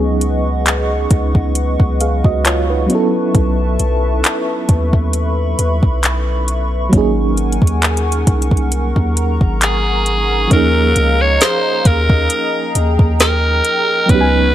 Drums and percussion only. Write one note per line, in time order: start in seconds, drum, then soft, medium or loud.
0.21 closed hi-hat medium
0.66 clap loud
0.66 closed hi-hat medium
1.11 kick loud
1.11 closed hi-hat medium
1.35 kick medium
1.55 closed hi-hat medium
1.80 kick medium
2.01 closed hi-hat medium
2.24 kick medium
2.45 clap loud
2.45 closed hi-hat medium
2.90 closed hi-hat medium
3.35 kick loud
3.35 closed hi-hat medium
3.79 closed hi-hat medium
4.24 clap loud
4.24 closed hi-hat medium
4.69 kick loud
4.69 closed hi-hat medium
4.93 kick medium
5.13 closed hi-hat medium
5.59 closed hi-hat medium
5.83 kick medium
6.03 clap loud
6.03 closed hi-hat medium
6.48 closed hi-hat medium
6.93 kick loud
6.93 closed hi-hat medium
7.37 closed hi-hat medium
7.52 closed hi-hat medium
7.62 kick medium
7.67 closed hi-hat medium
7.82 clap loud
7.82 closed hi-hat medium
7.97 closed hi-hat medium
8.12 closed hi-hat medium
8.27 kick medium
8.27 closed hi-hat medium
8.42 closed hi-hat medium
8.51 kick medium
8.57 closed hi-hat soft
8.72 closed hi-hat medium
8.96 kick medium
9.17 closed hi-hat medium
9.41 kick medium
9.61 clap loud
9.61 closed hi-hat medium
10.06 closed hi-hat medium
10.51 kick loud
10.51 closed hi-hat medium
10.96 closed hi-hat medium
11.41 snare loud
11.41 closed hi-hat medium
11.85 kick loud
11.85 closed hi-hat medium
12.10 kick loud
12.30 closed hi-hat medium
12.75 closed hi-hat medium
12.99 kick medium
13.20 cross-stick medium
13.20 snare loud
13.20 closed hi-hat medium
13.65 closed hi-hat medium
14.09 kick loud
14.09 closed hi-hat medium